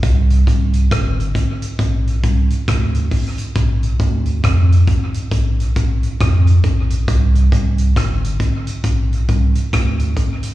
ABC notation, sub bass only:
X:1
M:4/4
L:1/16
Q:"Swing 16ths" 1/4=68
K:Cdor
V:1 name="Sub bass" clef=bass
C,,2 C,,2 G,,,2 z2 B,,,2 C,, z D,,2 z2 | B,,,2 D,,2 F,,2 z2 B,,,2 B,,, z F,,2 B,,,2 | C,,2 C,,2 G,,,2 z2 B,,,2 C,, z D,,2 z2 |]